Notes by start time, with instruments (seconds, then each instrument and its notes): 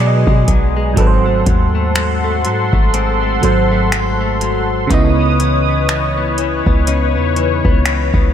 Already playing: 808-style bass B2, fm electric piano B2, clean electric guitar B2 G#3 D#4, analog synth pad B4 G#5 D#6
0.00 clean electric guitar F#3, fm electric piano F#3 G#4 D5
0.07 fm electric piano D#5
0.27 808-style bass B2, clean electric guitar G#3, kick
0.48 808-style bass B1, clean electric guitar F#3, kick, closed hi-hat
0.77 clean electric guitar G#3
0.94 808-style bass G#1, fm electric piano G#2 F#3, clean electric guitar G#2, analog synth pad A4 F#5 C6, kick, closed hi-hat
0.98 clean electric guitar C4, fm electric piano A4 B4
1.07 fm electric piano C5
1.26 clean electric guitar A3
1.46 808-style bass D#2, clean electric guitar F#3, kick, closed hi-hat
1.75 clean electric guitar A3
1.95 clean electric guitar F#3, finger snap, closed hi-hat
2.24 clean electric guitar A3
2.45 808-style bass G#2, clean electric guitar F#3, closed hi-hat
2.73 808-style bass G#1, clean electric guitar A3, kick
2.94 clean electric guitar G#2 C4, closed hi-hat
3.22 clean electric guitar A3
3.41 808-style bass G#1, fm electric piano G#2 F#3 A4 C5, clean electric guitar F#3, closed hi-hat
3.71 clean electric guitar A3
3.92 clean electric guitar F#3, finger snap, closed hi-hat
4.21 clean electric guitar A3
4.41 clean electric guitar F#3, closed hi-hat
4.87 808-style bass C#2, fm electric piano C#3 B3, clean electric guitar C#3 D#4, analog synth pad B4 C#5 D#6, kick, closed hi-hat
4.92 fm electric piano E4 D#5
5.19 clean electric guitar B3
5.40 clean electric guitar E3, closed hi-hat
5.68 clean electric guitar B3
5.89 clean electric guitar E3, finger snap, closed hi-hat
6.18 clean electric guitar B3
6.38 clean electric guitar E3, closed hi-hat
6.66 808-style bass C#2, clean electric guitar B3, kick
6.87 clean electric guitar C#3 D#4, closed hi-hat
7.16 808-style bass E2, clean electric guitar B3
7.36 clean electric guitar E3, closed hi-hat
7.65 808-style bass C#2, clean electric guitar B3, kick
7.86 clean electric guitar E3, finger snap, closed hi-hat
8.14 808-style bass C#2, clean electric guitar B3, kick